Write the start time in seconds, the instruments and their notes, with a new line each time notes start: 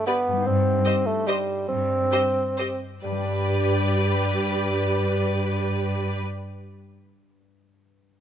Already playing: harp G2 G3 D4 G4 B4 D5 B5
0.06 bassoon B3, viola section G4, violin section B4 D5
0.28 harp G2
0.32 harp G3
0.37 harp D#4
0.42 harp C5
0.46 cello section G2, bassoon C4
0.85 viola section G4, violin section C5 D#5
1.06 bassoon A3
1.27 bassoon G3, viola section G4, violin section C5 D#5
1.68 cello section G2, bassoon C4
2.11 viola section G4, violin section C5 D#5
2.57 viola section G4, violin section C5 D#5
3.03 cello section G2, harp G2, bassoon G3, viola section G4, violin section B4 D5
3.11 harp G3
3.18 harp D4
3.25 harp B4
3.32 harp D5